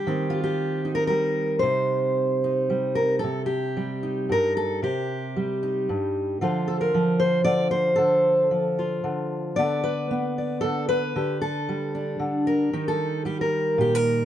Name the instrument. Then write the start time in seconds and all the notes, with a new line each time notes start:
steel-string acoustic guitar
Already playing: G3 G4
0.07 D#3 C4 D#4
0.30 F4
0.44 G4
0.85 D#4
0.95 A#4
1.07 G3 A#4
1.59 C3 C5
2.44 D#4
2.70 G3
2.95 A#4
3.19 A4
3.24 C3
3.46 G4
3.77 G3
4.03 D#4
4.29 G2 A#4
4.57 A4
4.82 C3 G4
5.36 G3
5.63 D#4
5.89 G2
6.41 D3 F3 F4 C5
6.68 A4
6.81 A#4
6.94 F3
7.20 C5
7.44 D3 D5
7.71 C5
7.96 D3 A4
8.51 F3
8.79 F4
9.04 D3
9.56 D3 B3 A4 D5
9.84 B4
10.11 B3
10.38 D5
10.61 D3 A4
10.89 B4
11.16 D3 G4
11.42 A4
11.69 G3
11.95 D4
12.19 D3
12.47 A#4
12.73 D#3 D#4
12.88 A4
13.25 G3 G4
13.41 A#4
13.78 A#2 G4
13.95 A#4